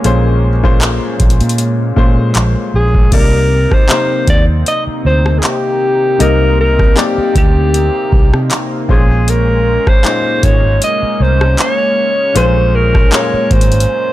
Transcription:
Already playing: grand piano A#2 G#3 C#4 G4, analog synth pad G#3 A#3 C#4
0.04 fingered electric bass A#1, grand piano A#2 G#3 C#4 C5, closed hi-hat
0.63 grand piano A#2 G#3 C#4 C5, kick
0.81 clap, closed hi-hat
1.20 fingered electric bass A#1, kick, closed hi-hat
1.30 closed hi-hat
1.41 fingered electric bass A#2, closed hi-hat
1.49 closed hi-hat
1.58 closed hi-hat
1.96 grand piano A#2 G#3 C#4 C5, fingered electric bass A#2, kick
2.35 fingered electric bass A#1, clap, closed hi-hat
2.74 fingered electric bass A#1, alto saxophone G#4
2.94 kick
3.12 fingered electric bass C2, grand piano C3 A#3 D#4 D5, analog synth pad C3 A#3 C4 D#4, alto saxophone A#4, kick, closed hi-hat, crash
3.71 alto saxophone C5, kick, cross-stick
3.89 grand piano C3 A#3 D#4 C5, clap, closed hi-hat
4.28 fingered electric bass D#2, alto saxophone D5, kick, closed hi-hat
4.66 alto saxophone D#5, closed hi-hat
4.87 muted fingered electric bass stroke
5.05 fingered electric bass D2, alto saxophone C5
5.26 cross-stick
5.38 alto saxophone G#4
5.43 alto saxophone G4, clap, closed hi-hat
6.19 fingered electric bass C2, grand piano C3 A#3 D#4 D#5, analog synth pad C4, alto saxophone A#4, closed hi-hat
6.61 alto saxophone A#4
6.79 kick, cross-stick
6.96 grand piano C3 A#3 D#4 D5, alto saxophone G4, clap, closed hi-hat
7.18 muted fingered electric bass stroke
7.35 fingered electric bass D2, alto saxophone G4, kick, closed hi-hat
7.74 closed hi-hat
8.12 fingered electric bass C2, kick
8.34 fingered electric bass C3, cross-stick
8.51 clap, closed hi-hat
8.89 fingered electric bass A#1, grand piano A#2 G#3 C#4 C5, analog synth pad G#3 C#4, alto saxophone G#4, kick
9.28 alto saxophone A#4, closed hi-hat
9.87 alto saxophone C5, kick, cross-stick
10.04 grand piano A#2 G#3 C#4 D#4, clap, closed hi-hat
10.43 fingered electric bass G#1, alto saxophone C#5, kick, closed hi-hat
10.82 alto saxophone D#5, closed hi-hat
11.03 muted fingered electric bass stroke
11.20 fingered electric bass C2, alto saxophone C5
11.41 cross-stick
11.58 alto saxophone C#5, clap, closed hi-hat
12.35 fingered electric bass A#1, grand piano A#2 G#3 C#4 C5, alto saxophone C5, closed hi-hat
12.75 alto saxophone A#4
12.95 kick, cross-stick
13.12 grand piano A#2 G#3 C#4 A#4, alto saxophone C#5, clap, closed hi-hat
13.34 muted fingered electric bass stroke
13.51 fingered electric bass G#1, alto saxophone C5, kick, closed hi-hat
13.61 closed hi-hat
13.72 closed hi-hat
13.80 closed hi-hat

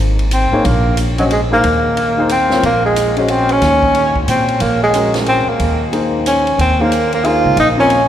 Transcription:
Already playing: upright bass G#1
0.19 ride
0.31 tenor saxophone C4, hi-hat pedal, ride
0.52 grand piano A#3 D#4 G#4 C#5, muted upright bass stroke
0.65 upright bass A#1, tenor saxophone A#3, ride
0.97 hi-hat pedal, ride
1.18 tenor saxophone F#3, grand piano C#4 F#4 C5 D#5, ride
1.31 tenor saxophone G#3, ride
1.51 grand piano A#3 D#4 G#4 C5, tenor saxophone A#3
1.64 upright bass D#2, ride
1.97 ride
2.17 grand piano A#3 D#4 G#4 C5
2.29 tenor saxophone C4, hi-hat pedal, ride
2.50 grand piano C4 F4 A#4 C#5, snare
2.63 upright bass A#1, tenor saxophone A#3, ride
2.85 tenor saxophone G#3
2.96 hi-hat pedal, ride
3.17 tenor saxophone G#3, grand piano C#4 F#4 C5 D#5, ride
3.28 tenor saxophone C4, ride
3.49 tenor saxophone C#4, ride
3.61 upright bass D#2, snare, ride
3.83 kick
3.95 ride
4.16 kick
4.27 upright bass A#2, tenor saxophone C4, hi-hat pedal, ride
4.48 ride
4.60 upright bass A#1, tenor saxophone A#3, ride
4.83 tenor saxophone G#3
4.94 grand piano G#3 C#4 F#4 A#4, hi-hat pedal, ride
5.14 snare, ride
5.26 tenor saxophone C4, ride
5.47 tenor saxophone A#3, muted upright bass stroke
5.59 upright bass D#2, ride
5.92 grand piano A#3 D#4 G#4 C5, ride
6.26 tenor saxophone C#4, hi-hat pedal, ride
6.47 ride
6.58 upright bass D#2, tenor saxophone C4, ride
6.79 grand piano A#3 D#4 G#4 C5, tenor saxophone A#3
6.92 hi-hat pedal, ride
7.12 tenor saxophone A#3, ride
7.24 grand piano A#3 D#4 G#4 C5, tenor saxophone F4, ride
7.44 upright bass C#2
7.56 upright bass A#1, tenor saxophone D#4, ride
7.77 grand piano C4 F4 A#4 C#5, tenor saxophone C#4
7.90 ride

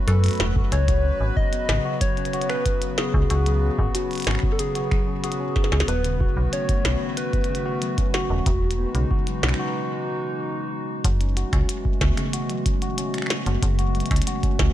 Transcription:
Already playing: ambient pad E3 F#3 A3 F#4, tine electric piano F#3 B3 C#4 F#4, synth texture B4
0.08 fm bass F#2, tine electric piano F#2, soft synth lead A4, closed hi-hat
0.24 tine electric piano F#3, closed hi-hat
0.26 closed hi-hat
0.28 closed hi-hat
0.31 closed hi-hat
0.33 closed hi-hat
0.35 closed hi-hat
0.40 fm bass E1, tine electric piano F#4, snare
0.56 tine electric piano F#4, kick
0.72 fm bass C#2, ambient pad C#3 B3, tine electric piano C#4, soft synth lead C#5, closed hi-hat
0.88 tine electric piano F#4, kick, closed hi-hat
1.04 tine electric piano C#4
1.21 fm bass G#1
1.37 soft synth lead D#5, kick
1.53 tine electric piano B3, closed hi-hat
1.69 fm bass G#1, tine electric piano C#3, finger snap, snare
1.85 tine electric piano F#4
2.01 tine electric piano F#3, soft synth lead C#5, kick, closed hi-hat
2.17 tine electric piano C#4, closed hi-hat
2.25 closed hi-hat
2.33 tine electric piano F#4, closed hi-hat
2.42 closed hi-hat
2.50 tine electric piano C#4, soft synth lead B4, finger snap
2.66 kick, closed hi-hat
2.82 closed hi-hat
2.98 tine electric piano B3, soft synth lead G#4, snare
3.14 fm bass C#2, tine electric piano C#3, kick
3.30 fm bass C#2, tine electric piano F#4, closed hi-hat
3.46 tine electric piano F#3, closed hi-hat
3.63 tine electric piano C#4
3.79 fm bass G#1, tine electric piano F#4, kick
3.95 tine electric piano C#4, soft synth lead F#4, closed hi-hat
4.11 closed hi-hat
4.13 closed hi-hat
4.15 closed hi-hat
4.18 closed hi-hat
4.20 closed hi-hat
4.22 closed hi-hat
4.25 fm bass G#1, finger snap, snare, closed hi-hat
4.31 finger snap
4.35 finger snap
4.39 finger snap
4.43 tine electric piano B3, kick
4.52 soft synth lead A4
4.59 tine electric piano C#3, soft synth lead G#4, closed hi-hat
4.75 tine electric piano F#4, closed hi-hat
4.91 tine electric piano F#3, finger snap, kick
5.08 tine electric piano C#4
5.24 tine electric piano F#4, soft synth lead G#4, closed hi-hat
5.32 closed hi-hat
5.40 tine electric piano C#4
5.56 kick, snare
5.64 snare
5.72 fm bass C#2, snare
5.80 snare
5.88 fm bass D#1, ambient pad D#3 A3 F#4, tine electric piano B3, soft synth lead B4, closed hi-hat
6.04 tine electric piano C#3, closed hi-hat
6.20 tine electric piano F#4, kick
6.37 fm bass B1, tine electric piano F#3
6.53 tine electric piano C#4, soft synth lead C#5, closed hi-hat
6.69 tine electric piano F#4, kick, closed hi-hat
6.85 fm bass B1, tine electric piano C#4, finger snap, snare
7.17 soft synth lead B4, closed hi-hat
7.33 tine electric piano B3, kick, closed hi-hat
7.44 closed hi-hat
7.49 tine electric piano C#3
7.55 closed hi-hat
7.66 tine electric piano F#4
7.82 tine electric piano F#3, closed hi-hat
7.98 tine electric piano C#4, kick, closed hi-hat
8.14 soft synth lead F#4, tine electric piano F#4, snare
8.30 fm bass D#1, tine electric piano C#4
8.46 fm bass E1, ambient pad E3 G#3 D#4 F#4, kick, closed hi-hat
8.71 closed hi-hat
8.79 tine electric piano B3
8.95 fm bass B1, tine electric piano C#3, closed hi-hat
9.11 tine electric piano F#4, kick
9.27 tine electric piano F#3, closed hi-hat
9.43 fm bass B1, tine electric piano C#4, finger snap, snare
9.49 finger snap
9.54 finger snap
9.59 tine electric piano F#4
11.04 fm bass F#1, ambient pad E3 G#3 A3 F#4, tine electric piano F#3, kick, closed hi-hat
11.21 tine electric piano C#4, closed hi-hat
11.37 tine electric piano F#4, closed hi-hat
11.53 fm bass C#2, tine electric piano C#4, finger snap, kick, closed hi-hat
11.69 closed hi-hat
11.85 kick
12.01 fm bass C#2, tine electric piano B3, kick, snare
12.17 tine electric piano C#3, finger snap, closed hi-hat
12.33 tine electric piano F#4, closed hi-hat
12.50 tine electric piano F#3, closed hi-hat
12.66 tine electric piano C#4, kick, closed hi-hat
12.82 tine electric piano F#4, closed hi-hat
12.98 tine electric piano C#4, closed hi-hat
13.14 finger snap, closed hi-hat
13.18 finger snap
13.22 finger snap
13.26 finger snap
13.30 snare, closed hi-hat
13.46 fm bass F#1, tine electric piano B3, closed hi-hat
13.62 fm bass F#1, tine electric piano C#3, kick, closed hi-hat
13.79 tine electric piano F#4, closed hi-hat
13.95 tine electric piano F#3, closed hi-hat
14.00 closed hi-hat
14.06 closed hi-hat
14.11 fm bass C#2, tine electric piano C#4, finger snap, kick, closed hi-hat
14.16 closed hi-hat
14.22 closed hi-hat
14.27 tine electric piano F#4, closed hi-hat
14.43 tine electric piano C#4, kick, closed hi-hat
14.59 fm bass C#2, kick, snare

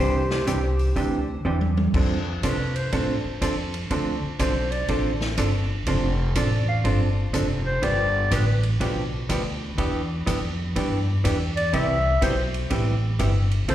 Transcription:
Already playing: clarinet G4, electric slide guitar C5
0.00 upright bass C2, hollow-body jazz guitar C3 E3 D4 G4
0.30 snare
0.47 upright bass C2, hollow-body jazz guitar C3 E3 D4 G4, closed hi-hat
0.79 open hi-hat
0.96 upright bass D2, hollow-body jazz guitar C3 E3 D4 G4, kick, open hi-hat
1.45 upright bass E2, hollow-body jazz guitar C3 E3 D4 G4
1.61 high tom
1.77 high tom
1.94 upright bass F2, hollow-body jazz guitar F3 C4 D4 A4, kick, crash
2.43 upright bass C3, hollow-body jazz guitar F3 C4 D4 A4, clarinet B4, kick, hi-hat pedal, ride
2.75 clarinet C5, ride
2.92 upright bass A2, hollow-body jazz guitar F3 C4 D4 A4, kick, ride
3.24 muted upright bass stroke
3.41 upright bass F2, hollow-body jazz guitar F3 C4 D4 A4, kick, hi-hat pedal, ride
3.74 ride
3.91 upright bass D2, hollow-body jazz guitar D3 F3 C4 D4 A4, kick, ride
4.23 muted upright bass stroke
4.39 upright bass B1, hollow-body jazz guitar D3 F3 C4 D4 A4, clarinet C5, kick, hi-hat pedal, ride
4.72 clarinet D5, ride
4.88 upright bass A1, hollow-body jazz guitar D3 F3 C4 D4 A4, kick, ride
5.21 snare
5.38 upright bass G1, hollow-body jazz guitar D3 F3 C4 D4 A4, kick, hi-hat pedal, ride
5.86 upright bass F1, hollow-body jazz guitar F3 C4 D4 A4, kick, ride
6.35 upright bass A1, hollow-body jazz guitar F3 C4 D4 A4, clarinet D5, kick, hi-hat pedal, ride
6.69 clarinet F5
6.84 upright bass G1, hollow-body jazz guitar F3 C4 D4 A4, kick, ride
7.33 upright bass F1, hollow-body jazz guitar F3 C4 D4 A4, kick, hi-hat pedal, ride
7.66 clarinet C5
7.82 upright bass G1, hollow-body jazz guitar D3 F3 B3 D4 G4, clarinet D5, kick, ride
8.31 upright bass A1, hollow-body jazz guitar D3 F3 B3 D4 G4, clarinet B4, kick, hi-hat pedal, ride
8.63 ride
8.80 upright bass B1, hollow-body jazz guitar D3 F3 B3 D4 G4, kick, ride
9.29 upright bass D2, hollow-body jazz guitar D3 F3 B3 D4 G4, kick, hi-hat pedal, ride
9.78 upright bass E2, hollow-body jazz guitar E3 B3 D4 G4, kick, ride
10.26 upright bass F2, hollow-body jazz guitar E3 B3 D4 G4, kick, hi-hat pedal, ride
10.76 upright bass G2, hollow-body jazz guitar E3 B3 D4 G4, kick, ride
11.24 upright bass E2, hollow-body jazz guitar E3 B3 D4 G4, kick, hi-hat pedal, ride
11.57 clarinet D5, ride
11.73 upright bass C2, hollow-body jazz guitar C3 G3 B3 E4 G4, clarinet E5, kick, ride
12.22 upright bass B1, hollow-body jazz guitar C3 G3 B3 E4 G4, clarinet C5, kick, hi-hat pedal, ride
12.54 ride
12.70 upright bass A1, hollow-body jazz guitar C3 G3 B3 E4 G4, kick, ride
13.19 upright bass G1, hollow-body jazz guitar C3 G3 B3 E4 G4, kick, hi-hat pedal, ride
13.51 ride
13.68 upright bass F1, hollow-body jazz guitar F3 C4 E4 A4, clarinet C5, kick, ride

